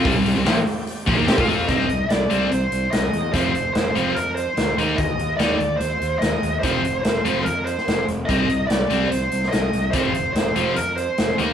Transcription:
<<
  \new Staff \with { instrumentName = "Lead electric guitar" } { \time 4/4 \key c \minor \tempo 4 = 145 r1 | ees''4 d''4 c''4 ees''4 | c''4 c''4 bes'8 c''4 r8 | ees''4 d''4 c''4 ees''4 |
c''4 c''4 bes'8 c''4 r8 | ees''4 d''4 c''4 ees''4 | c''4 c''4 bes'8 c''4 r8 | }
  \new Staff \with { instrumentName = "Tonewheel organ" } { \time 4/4 \key c \minor <c' g' d''>1 | r1 | r1 | r1 |
r1 | r1 | r1 | }
  \new Staff \with { instrumentName = "Distorted electric guitar" } { \clef bass \time 4/4 \key c \minor <c g>16 <c g>16 <c g>16 <c g>16 <bes, f>16 r4 r16 <bes, f>16 <ees bes>16 <c' g'>16 <bes f'>16 <f c' f'>8 | <c g c'>8 r4 <c g c'>8 r2 | <f, c f>8 r4 <f, c f>8 r4. <ees bes ees'>8 | r4 <ees bes ees'>8 r2 r8 |
<f, c f>8 r4 <f, c f>8 r2 | <c g c'>8 r4 <c g c'>8 r2 | <f, c f>8 r4 <f, c f>8 r4. <ees bes ees'>8 | }
  \new Staff \with { instrumentName = "Overdriven electric guitar" } { \clef bass \time 4/4 \key c \minor <c g>16 <c g>16 <c g>16 <c g>16 <bes, f>16 r4 r16 <bes, f>16 <ees bes>16 <c' g'>16 <bes f'>16 <f c' f'>8 | <c g c'>8 r4 <c g c'>8 r2 | <f, c f>8 r4 <f, c f>8 r4. <ees bes ees'>8 | r4 <ees bes ees'>8 r2 r8 |
<f, c f>8 r4 <f, c f>8 r2 | <c g c'>8 r4 <c g c'>8 r2 | <f, c f>8 r4 <f, c f>8 r4. <ees bes ees'>8 | }
  \new Staff \with { instrumentName = "Fingered electric bass" } { \clef bass \time 4/4 \key c \minor c,16 c,16 c,16 c,16 bes,,16 r4 r16 bes,,16 ees,16 c16 bes,16 f,8 | c,8 c,8 c,8 c,8 c,8 c,8 c,8 e,8 | f,,8 f,,8 f,,8 f,,8 f,4 d,8 ees,8 | ees,8 ees,8 ees,8 ees,8 ees,8 ees,8 ees,8 ees,8 |
f,,8 f,,8 f,,8 f,,8 f,4 f,,8 f,,8 | c,8 c,8 c,8 c,8 c,8 c,8 c,8 c,8 | f,,8 f,,8 f,,8 f,,8 f,4 f,,8 ees,8 | }
  \new DrumStaff \with { instrumentName = "Drums" } \drummode { \time 4/4 <hho bd>8 hho8 <hho sn>8 hho8 hho8 <hho bd>8 <hho sn>16 bd16 hho8 | <hh bd>16 sn16 hh8 <hh sn>8 hh8 hh8 hh8 <hh sn>8 hh8 | <hh bd>8 hh8 <hh sn>8 hh8 hh8 hh8 <hh sn>8 hh8 | <hh bd>8 hh8 <hh sn>8 hh8 hh8 hh8 <hh sn>8 hh8 |
<hh bd>8 hh8 <hh sn>8 hh8 hh8 hh16 sn16 <hh sn>8 hh8 | <hh bd>8 hh8 <hh sn>8 hh8 hh8 hh16 sn16 <hh sn>8 hh8 | <hh bd>8 hh8 <hh sn>8 hh8 hh8 hh8 <hh sn>8 hh8 | }
>>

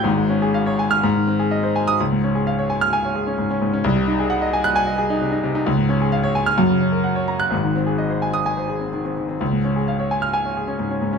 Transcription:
\new Staff \with { instrumentName = "Grand piano" } { \time 4/4 \key des \major \tempo 4 = 129 << { r4. r16 f'''16 r4. r16 ees'''16 | r4. r16 f'''8 r4. r16 | r4. r16 ges'''8 r4. r16 | r4. r16 f'''16 r4. r16 ges'''16 |
r4. r16 ees'''8 r4. r16 | r4. r16 f'''8 r4. r16 | } \\ { <aes,, aes,>16 aes16 des'16 aes'16 f''16 des''16 aes''8 aes,16 ees16 c'16 aes'16 ees''16 c''16 aes''8 | des,16 aes,16 des'16 aes'16 f''16 des''16 aes''8 aes''16 des''16 aes'16 des'16 aes,16 des'16 aes,16 des'16 | c,16 c16 ees'16 aes'16 ges''16 ees''16 aes''8 aes''16 ees''16 aes'16 ees'16 c16 ees'16 c16 ees'16 | des,16 aes,16 des'16 aes'16 f''16 des''16 aes''8 ges,16 des16 des'16 bes'16 ges''16 des''16 bes''8 |
<aes,, aes,>16 ees16 c'16 aes'16 ees''16 c''16 aes''8 aes''16 c''16 aes'16 c'16 ees16 c'16 ees16 c'16 | des,16 aes,16 des'16 aes'16 f''16 des''16 aes''8 aes''16 des''16 aes'16 des'16 aes,16 des'16 aes,16 des'16 | } >> }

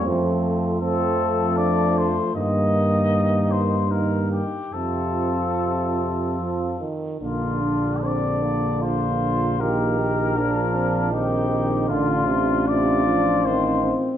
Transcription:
<<
  \new Staff \with { instrumentName = "Trumpet" } { \time 3/4 \key bes \major \tempo 4 = 77 r4 a'4 d''8 c''8 | ees''4. c''8 bes'8 g'8 | a'2~ a'8 r8 | f'4 d''4 c''4 |
bes'2 g'4 | f'4 d''4 c''8 r8 | }
  \new Staff \with { instrumentName = "Flugelhorn" } { \time 3/4 \key bes \major c'4 c'4 d'4 | ees'2 ees'8 r8 | f'2~ f'8 r8 | d'2 f'4 |
g'4 d'4 ees'4 | f'4 f'4. r8 | }
  \new Staff \with { instrumentName = "French horn" } { \time 3/4 \key bes \major a4 a2 | bes2 bes8 r8 | c'2~ c'8 r8 | bes8 d'8 c'8 bes4. |
bes8 ees'8 d'8 c'8 c'4 | d'2 c'8 c'8 | }
  \new Staff \with { instrumentName = "Euphonium" } { \clef bass \time 3/4 \key bes \major f4 f2 | ees2 ees8 r8 | c4 c4 f8 ees8 | d2. |
ees4 f4 ees8 ees8 | d8 c8 c8 f8 ees8 r8 | }
  \new Staff \with { instrumentName = "Bass trombone" } { \clef bass \time 3/4 \key bes \major f,2. | g,2~ g,8 r8 | f,2~ f,8 r8 | bes,,2.~ |
bes,,2. | a,,2~ a,,8 r8 | }
>>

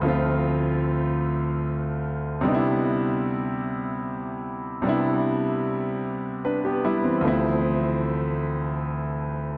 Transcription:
<<
  \new Staff \with { instrumentName = "Grand piano" } { \time 6/8 \key d \dorian \tempo 4. = 50 r2. | r2. | r2 <d' b'>16 <b g'>16 <g e'>16 <e c'>16~ | <e c'>16 r2 r8. | }
  \new Staff \with { instrumentName = "Grand piano" } { \time 6/8 \key d \dorian <d, f a c' f'>2. | <c g b d' ees' e'>2. | <c g b d' e'>2. | <d, f a c' e'>2. | }
>>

